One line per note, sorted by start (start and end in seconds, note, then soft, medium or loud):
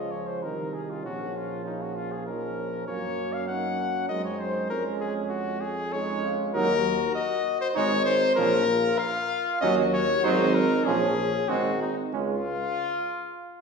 0.00 0.44 C#2 medium
0.00 0.45 F3 medium
0.00 0.44 C#4 medium
0.00 0.39 F4 medium
0.00 0.13 D#5 medium
0.11 0.29 C#5 medium
0.27 0.44 C5 medium
0.42 1.06 C2 medium
0.42 1.03 D#3 medium
0.42 1.04 D#4 medium
0.42 1.03 D#4 medium
0.42 0.75 A#4 medium
0.74 0.92 G#4 medium
0.90 1.05 F4 medium
1.03 2.88 A#1 medium
1.03 2.25 F3 medium
1.03 2.26 C#4 medium
1.03 1.65 C#4 medium
1.03 1.38 F#4 medium
1.37 1.65 F4 medium
1.65 1.83 D#4 medium
1.65 2.28 F4 medium
1.81 1.97 F#4 medium
1.96 2.13 F4 medium
2.12 2.26 G#4 medium
2.26 2.87 F3 medium
2.26 2.86 C#4 medium
2.26 2.58 D#4 medium
2.26 2.87 A#4 medium
2.59 2.88 C#4 medium
2.87 4.08 F#2 medium
2.87 3.51 A#3 medium
2.87 3.48 A#3 medium
2.87 3.47 C#4 medium
2.87 3.34 C#5 medium
3.33 3.47 F5 medium
3.48 4.12 A#3 medium
3.48 4.10 C#4 medium
3.48 3.82 D#4 medium
3.48 4.08 F#5 loud
3.80 4.10 C#4 medium
4.09 4.70 F#2 medium
4.09 4.71 G#3 medium
4.09 4.69 C4 medium
4.09 4.72 D#4 medium
4.09 4.24 D#5 loud
4.25 4.41 C#5 medium
4.39 4.69 C5 loud
4.70 6.38 F2 medium
4.70 5.65 G#3 medium
4.70 5.64 C#4 medium
4.70 5.66 C#4 medium
4.70 4.84 A#4 loud
5.00 5.14 G#4 medium
5.30 5.62 F#4 medium
5.61 5.94 G#4 loud
5.93 6.51 G#3 medium
5.93 6.51 C#4 medium
5.93 6.26 D#4 medium
5.93 6.33 C#5 loud
6.24 6.56 F4 medium
6.54 7.06 D#2 loud
6.54 6.76 F#3 medium
6.54 6.76 D#4 medium
6.54 7.75 F#4 loud
6.54 7.12 A#4 loud
7.15 7.60 D#5 loud
7.61 7.68 C5 loud
7.74 8.27 G#1 loud
7.74 7.97 G#3 medium
7.74 7.96 D#4 loud
7.74 8.36 D#4 loud
7.74 8.05 C#5 loud
8.06 8.35 C5 loud
8.36 8.89 A#1 loud
8.36 8.60 F3 medium
8.36 8.68 C#4 loud
8.36 8.59 C#4 medium
8.36 9.00 A#4 loud
8.68 9.64 F4 loud
8.99 9.60 F5 loud
9.60 10.14 D#2 loud
9.60 9.84 F#3 medium
9.60 9.83 C#4 loud
9.60 10.23 F#4 loud
9.60 9.75 D#5 loud
9.93 10.26 C#5 loud
10.24 10.76 G#1 loud
10.24 10.46 F#3 medium
10.24 10.45 D#4 medium
10.24 10.88 D#4 loud
10.24 10.56 C5 loud
10.55 10.86 A#4 loud
10.84 11.38 A#1 loud
10.84 11.09 F3 medium
10.84 11.07 C#4 medium
10.84 11.51 C#4 loud
10.84 11.50 G#4 loud
11.48 12.03 G#1 medium
11.48 11.72 G#3 medium
11.48 11.71 C4 medium
11.48 11.97 D#4 medium
11.48 11.81 F#4 loud
11.82 11.96 D#4 medium
12.12 12.67 C#2 medium
12.12 12.36 G#3 medium
12.12 12.35 C#4 medium
12.12 13.61 F4 loud